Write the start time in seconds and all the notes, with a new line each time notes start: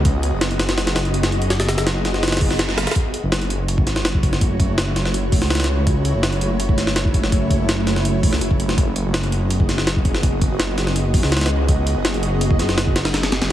Already playing: C#2
0.05 kick, closed hi-hat
0.23 closed hi-hat
0.33 F#1
0.41 snare, closed hi-hat
0.51 closed hi-hat
0.59 snare, closed hi-hat
0.69 snare, closed hi-hat
0.78 snare, closed hi-hat
0.87 snare, closed hi-hat
0.96 F#1, snare, closed hi-hat
1.05 F#1, closed hi-hat
1.14 closed hi-hat
1.23 snare, closed hi-hat
1.32 closed hi-hat
1.42 closed hi-hat
1.50 snare, closed hi-hat
1.60 snare, closed hi-hat
1.69 snare, closed hi-hat
1.78 F#1, snare, closed hi-hat
1.87 snare, closed hi-hat
2.05 snare, closed hi-hat
2.14 snare
2.23 snare, closed hi-hat, reverse cymbal
2.28 snare, closed hi-hat
2.32 snare, closed hi-hat
2.37 snare, closed hi-hat
2.41 F#1, kick, open hi-hat
2.51 F#1, snare
2.59 F#1, snare, closed hi-hat
2.69 snare
2.78 F#1, snare, closed hi-hat
2.87 snare, closed hi-hat
2.91 snare, closed hi-hat
2.96 kick, closed hi-hat
3.14 closed hi-hat
3.23 F#1
3.32 snare, closed hi-hat
3.42 closed hi-hat
3.50 closed hi-hat
3.68 closed hi-hat
3.78 kick
3.87 A1, snare, closed hi-hat
3.96 F#1, snare
4.05 snare, closed hi-hat
4.14 kick
4.23 kick, closed hi-hat
4.33 snare
4.41 kick, closed hi-hat
4.60 kick, closed hi-hat
4.69 F#1
4.78 snare, closed hi-hat
4.96 snare, closed hi-hat
5.05 snare
5.14 closed hi-hat
5.32 E1, kick, open hi-hat
5.42 C#2, snare
5.50 snare, closed hi-hat
5.55 snare, closed hi-hat
5.60 snare, closed hi-hat
5.64 snare, closed hi-hat
5.87 kick, closed hi-hat
6.05 closed hi-hat
6.14 F#1
6.23 snare, closed hi-hat
6.32 closed hi-hat
6.41 closed hi-hat
6.60 closed hi-hat
6.69 kick
6.77 A1, snare, closed hi-hat
6.87 F#1, snare
6.96 snare, closed hi-hat
7.05 kick
7.14 kick, closed hi-hat
7.24 snare
7.32 kick, closed hi-hat
7.50 kick, closed hi-hat
7.60 F#1
7.69 snare, closed hi-hat
7.87 snare, closed hi-hat
7.96 snare
8.05 closed hi-hat
8.23 E1, kick, open hi-hat
8.32 C#2, snare
8.41 F#1, closed hi-hat
8.51 kick
8.59 F#1, closed hi-hat
8.69 snare
8.78 F#1, kick, closed hi-hat
8.96 closed hi-hat
9.05 F#1
9.14 snare, closed hi-hat
9.23 closed hi-hat
9.32 closed hi-hat
9.51 closed hi-hat
9.60 kick
9.69 F#1, snare, closed hi-hat
9.78 F#1, snare
9.87 snare, closed hi-hat
9.96 kick
10.05 kick, closed hi-hat
10.14 snare
10.23 kick, closed hi-hat
10.41 kick, closed hi-hat
10.51 F#1
10.60 snare, closed hi-hat
10.78 snare, closed hi-hat
10.87 snare
10.96 closed hi-hat
11.14 F#1, kick, open hi-hat
11.23 C#2, snare
11.32 snare, closed hi-hat
11.37 snare, closed hi-hat
11.41 snare, closed hi-hat
11.46 snare, closed hi-hat
11.69 kick, closed hi-hat
11.87 closed hi-hat
11.96 F#1
12.05 snare, closed hi-hat
12.14 closed hi-hat
12.23 closed hi-hat
12.41 closed hi-hat
12.51 kick
12.59 F#1, snare, closed hi-hat
12.69 F#1, snare
12.78 snare, closed hi-hat
12.87 kick
12.96 snare, closed hi-hat
13.05 snare, closed hi-hat
13.14 snare, closed hi-hat
13.23 snare, closed hi-hat
13.32 snare, closed hi-hat
13.42 F#1, snare, closed hi-hat